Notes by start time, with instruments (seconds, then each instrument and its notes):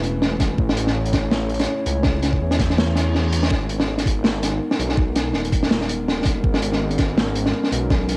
Already playing: detuned saw bass E1, analog synth pad A3 C#4 E4 B4
0.03 closed hi-hat
0.22 snare
0.40 kick, snare, closed hi-hat
0.58 detuned saw bass A1, analog synth pad C#5, kick
0.69 snare
0.77 closed hi-hat
0.87 snare
1.06 closed hi-hat
1.13 kick, snare, closed hi-hat
1.31 snare
1.49 closed hi-hat
1.54 closed hi-hat
1.59 snare, closed hi-hat
1.63 closed hi-hat
1.86 detuned saw bass C#2, closed hi-hat
2.03 kick, snare
2.22 snare, closed hi-hat
2.33 kick
2.41 detuned saw bass E2
2.51 snare, closed hi-hat
2.59 kick, snare, closed hi-hat
2.70 snare
2.78 snare, reverse cymbal
2.96 snare, closed hi-hat
3.15 snare
3.32 closed hi-hat
3.43 snare
3.51 detuned saw bass G#1, analog synth pad G#3 B3 D#4 A#4, kick, snare
3.69 closed hi-hat
3.80 snare
3.98 snare, closed hi-hat
4.06 kick, closed hi-hat
4.24 snare
4.43 snare, closed hi-hat
4.71 snare
4.79 detuned saw bass B1, closed hi-hat
4.89 snare
4.97 kick
5.15 snare, closed hi-hat
5.33 detuned saw bass D#1, snare
5.45 closed hi-hat
5.52 kick, closed hi-hat
5.63 snare
5.71 snare
5.81 snare
5.89 closed hi-hat
6.08 snare
6.22 kick, snare, closed hi-hat
6.44 detuned saw bass G#1, analog synth pad C#4, kick
6.54 snare
6.62 closed hi-hat
6.73 snare
6.91 closed hi-hat
6.98 kick, snare, closed hi-hat
7.17 snare
7.35 closed hi-hat
7.45 snare
7.64 snare
7.72 detuned saw bass B1, closed hi-hat
7.90 kick, snare
8.08 snare, closed hi-hat
8.13 snare